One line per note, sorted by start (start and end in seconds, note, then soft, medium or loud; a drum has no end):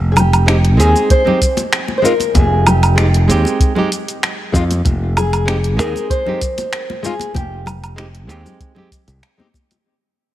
0.00 0.79 F1 loud
0.12 0.17 G#4 medium
0.16 0.80 G4 medium
0.16 closed hi-hat soft
0.16 low conga medium
0.16 low woodblock medium
0.16 shaker medium
0.33 closed hi-hat soft
0.33 low woodblock medium
0.33 shaker soft
0.46 0.55 G#3 medium
0.46 0.56 C4 medium
0.46 0.57 D#4 medium
0.46 0.57 G4 medium
0.46 finger snap medium
0.46 closed hi-hat medium
0.46 shaker soft
0.65 closed hi-hat soft
0.77 0.93 D#2 medium
0.77 1.22 G#3 medium
0.77 1.22 C4 medium
0.77 1.23 D#4 medium
0.77 1.10 G#4 loud
0.77 1.23 G#4 medium
0.77 closed hi-hat soft
0.77 shaker medium
0.96 muted conga medium
0.96 shaker soft
1.10 1.96 C5 loud
1.10 kick loud
1.10 closed hi-hat medium
1.10 shaker soft
1.25 1.38 G#3 medium
1.25 1.39 C4 medium
1.25 1.39 D#4 medium
1.25 1.40 G4 medium
1.25 low conga medium
1.41 kick medium
1.41 closed hi-hat soft
1.41 shaker medium
1.57 closed hi-hat soft
1.57 muted conga medium
1.57 shaker soft
1.73 finger snap medium
1.73 closed hi-hat medium
1.73 shaker soft
1.88 muted conga medium
1.98 2.04 C5 medium
2.02 2.12 G#3 medium
2.02 2.12 C4 medium
2.02 2.13 D#4 medium
2.02 2.13 F4 medium
2.02 2.36 A#4 medium
2.02 shaker medium
2.20 closed hi-hat soft
2.20 muted conga medium
2.20 shaker soft
2.35 3.31 F1 loud
2.35 2.67 G#4 loud
2.35 kick loud
2.35 closed hi-hat medium
2.35 high conga medium
2.35 shaker soft
2.67 3.88 G4 medium
2.67 closed hi-hat soft
2.67 low conga medium
2.67 low woodblock medium
2.67 shaker medium
2.83 closed hi-hat soft
2.83 low woodblock medium
2.83 shaker soft
2.96 3.05 G#3 medium
2.96 3.06 C4 medium
2.96 3.06 D#4 medium
2.96 3.07 G4 medium
2.96 finger snap medium
2.96 closed hi-hat medium
2.96 shaker soft
3.14 closed hi-hat soft
3.28 3.43 D#2 medium
3.28 3.72 G#3 medium
3.28 3.73 C4 medium
3.28 3.73 D#4 medium
3.28 3.74 G4 medium
3.28 closed hi-hat soft
3.28 shaker medium
3.45 muted conga medium
3.45 shaker soft
3.60 kick loud
3.60 closed hi-hat medium
3.60 shaker soft
3.75 3.88 G#3 medium
3.75 3.89 C4 medium
3.75 3.90 D#4 medium
3.75 3.90 G4 medium
3.75 low conga medium
3.92 closed hi-hat medium
3.92 shaker medium
4.08 closed hi-hat soft
4.08 shaker soft
4.23 finger snap loud
4.23 closed hi-hat medium
4.23 shaker soft
4.52 4.80 F2 medium
4.52 4.62 G#3 medium
4.52 4.62 C4 medium
4.52 4.63 D#4 medium
4.52 4.64 F4 medium
4.52 kick medium
4.52 muted conga medium
4.52 shaker medium
4.71 closed hi-hat soft
4.71 muted conga medium
4.71 shaker soft
4.85 5.79 F1 loud
4.85 kick loud
4.85 closed hi-hat medium
4.85 high conga medium
4.85 shaker soft
5.17 5.79 G#4 loud
5.17 closed hi-hat soft
5.17 low conga medium
5.17 low woodblock medium
5.17 shaker medium
5.33 closed hi-hat soft
5.33 low woodblock medium
5.33 shaker soft
5.46 5.55 G#3 medium
5.46 5.56 C4 medium
5.46 5.56 D#4 medium
5.46 5.57 G4 medium
5.46 finger snap loud
5.46 closed hi-hat medium
5.46 shaker soft
5.64 closed hi-hat soft
5.77 5.93 D#2 medium
5.77 6.22 G#3 medium
5.77 6.22 C4 medium
5.77 6.23 D#4 medium
5.77 6.23 G#4 medium
5.77 6.10 A#4 loud
5.77 closed hi-hat soft
5.77 shaker medium
5.96 muted conga medium
5.96 shaker soft
6.10 7.00 C5 loud
6.10 kick loud
6.10 closed hi-hat medium
6.10 shaker soft
6.25 6.38 G#3 medium
6.25 6.39 C4 medium
6.25 6.40 D#4 medium
6.25 6.40 G4 medium
6.25 low conga medium
6.41 kick medium
6.41 closed hi-hat medium
6.41 shaker medium
6.58 closed hi-hat soft
6.58 muted conga medium
6.58 shaker soft
6.73 finger snap loud
6.73 closed hi-hat medium
6.73 shaker soft
6.90 muted conga medium
7.03 7.12 G#3 medium
7.03 7.12 C4 medium
7.03 7.13 D#4 medium
7.03 7.14 F4 medium
7.03 7.35 G#4 medium
7.03 shaker medium
7.20 closed hi-hat soft
7.20 muted conga medium
7.20 shaker soft
7.35 8.29 F1 loud
7.35 9.19 G4 medium
7.35 kick loud
7.35 closed hi-hat medium
7.35 high conga medium
7.35 shaker soft
7.66 closed hi-hat soft
7.66 low conga medium
7.66 low woodblock medium
7.66 shaker medium
7.84 closed hi-hat soft
7.84 low woodblock medium
7.84 shaker soft
7.96 8.05 G#3 medium
7.96 8.06 C4 medium
7.96 8.07 D#4 medium
7.96 8.07 G4 medium
7.96 finger snap loud
7.96 closed hi-hat medium
7.96 shaker soft
8.15 closed hi-hat soft
8.27 8.43 D#2 medium
8.27 8.72 G#3 medium
8.27 8.72 C4 medium
8.27 8.73 D#4 medium
8.27 8.74 G4 medium
8.27 closed hi-hat soft
8.27 shaker medium
8.46 muted conga medium
8.46 low conga medium
8.46 shaker soft
8.60 kick loud
8.60 closed hi-hat medium
8.60 shaker soft
8.75 8.88 G#3 medium
8.75 8.89 C4 medium
8.75 8.89 D#4 medium
8.75 8.90 G4 medium
8.75 low conga medium
8.91 kick medium
8.91 closed hi-hat medium
8.91 shaker medium
9.08 9.20 C2 loud
9.08 closed hi-hat soft
9.08 shaker soft
9.23 finger snap loud
9.23 closed hi-hat medium
9.23 shaker soft
9.38 9.46 G#3 medium
9.38 9.47 C4 medium
9.38 9.47 D#4 medium
9.38 9.48 G4 medium
9.38 high conga medium
9.54 kick medium
9.54 muted conga medium
9.54 shaker medium
9.71 closed hi-hat medium
9.71 muted conga medium
9.71 shaker soft